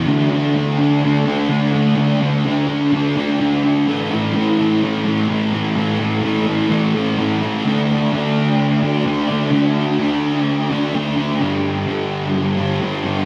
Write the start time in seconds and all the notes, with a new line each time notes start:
0.06 D3 A3 D4
0.30 A3 D4
0.54 D3 A3 D4
0.79 A3 D4
1.03 D3 A3 D4
1.25 D3 A3 D4
1.48 D3 A3 D4
1.72 A3 D4
1.96 D3 A3 D4
2.20 A3 D4
2.45 D3 A3 D4
2.67 A3 D4
2.91 D3 A3 D4
3.17 D3 A3 D4
3.40 D3 A3 D4
3.63 A3 D4
3.86 A2 E3 A3
4.10 E3 A3
4.33 A2 E3 A3
4.59 E3 A3
4.82 A2 E3 A3
5.05 A2 E3 A3
5.28 A2 E3 A3
5.51 E3 A3
5.75 A2 E3 A3
6.00 E3 A3
6.22 A2 E3 A3
6.46 E3 A3
6.69 A2 E3 A3
6.94 A2 E3 A3
7.18 A2 E3 A3
7.42 E3 A3
7.65 D3 A3 D4
8.12 D3 A3 D4
8.82 A3 D4
9.05 D3 A3 D4
9.29 A3 D4
9.50 D3 A3 D4
9.99 D3 A3 D4
10.70 A3 D4
10.94 D3 A3 D4
11.17 A3 D4
11.40 G2 D3 G3
11.86 G2 D3 G3
12.57 D3 G3
12.81 G2 D3 G3
13.04 D3 G3